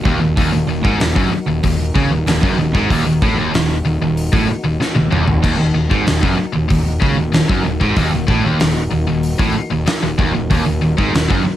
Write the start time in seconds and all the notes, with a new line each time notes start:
Already playing: D#4 F#4 A#4
0.05 D#1 D#2, kick
0.21 D#1 D#2
0.37 D#1 D#2, kick, open hi-hat
0.52 D#1 D#2
0.68 D#1 D#2
0.84 G#1 G#2, kick
1.00 D#1 D#2, snare, open hi-hat
1.16 F#1 F#2, kick
1.32 muted overdriven electric guitar stroke, muted fingered electric bass stroke, muted distorted electric guitar stroke
1.47 D#1 D#2
1.63 D#1 D#2, kick, open hi-hat
1.95 C#2 C#3, kick
2.11 D#1 D#2
2.27 D#1 D#2, snare, open hi-hat
2.43 F#1 F#2, kick
2.58 D#1 D#2
2.75 G#1 G#2, kick
2.90 D#1 D#2, kick, open hi-hat
3.06 D#1 D#2
3.22 A1 A2, kick
3.38 D#1 D#2
3.53 D#1 D#2, snare, open hi-hat
3.85 D#1 D#2
4.01 D#1 D#2
4.17 open hi-hat
4.32 A1 A2, kick
4.48 muted distorted electric guitar stroke, muted overdriven electric guitar stroke, muted fingered electric bass stroke
4.64 D#1 D#2
4.80 muted overdriven electric guitar stroke, muted fingered electric bass stroke, muted distorted electric guitar stroke, snare
4.95 D#1 D#2, high tom
5.11 D#1 D#2, mid tom
5.28 D#1 D#2, floor tom
5.43 D#1 D#2, kick, crash
5.59 D#1 D#2
5.74 D#1 D#2
5.90 G#1 G#2, kick
6.05 D#1 D#2, snare, open hi-hat
6.21 F#1 F#2, kick
6.37 muted distorted electric guitar stroke, muted fingered electric bass stroke, muted overdriven electric guitar stroke
6.53 D#1 D#2
6.68 D#1 D#2, kick, open hi-hat
7.00 C#2 C#3, kick
7.16 D#1 D#2
7.32 D#1 D#2, snare, open hi-hat
7.48 F#1 F#2, kick
7.64 D#1 D#2
7.80 G#1 G#2, kick
7.96 D#1 D#2, kick, open hi-hat
8.12 D#1 D#2
8.27 A1 A2, kick
8.43 D#1 D#2
8.59 D#1 D#2, snare, open hi-hat
8.91 D#1 D#2
9.07 D#1 D#2
9.23 open hi-hat
9.39 A1 A2, kick
9.55 muted overdriven electric guitar stroke, muted distorted electric guitar stroke, muted fingered electric bass stroke
9.71 D#1 D#2
9.86 muted distorted electric guitar stroke, muted overdriven electric guitar stroke, muted fingered electric bass stroke, snare, open hi-hat
10.03 D#1 D#2
10.18 D#1 D#2, kick
10.34 D#1 D#2
10.50 D#1 D#2, kick, open hi-hat
10.66 D#1 D#2
10.81 D#1 D#2
10.97 G#1 G#2, kick
11.12 D#1 D#2, snare, open hi-hat
11.28 F#1 F#2, kick
11.44 muted distorted electric guitar stroke, muted overdriven electric guitar stroke, muted fingered electric bass stroke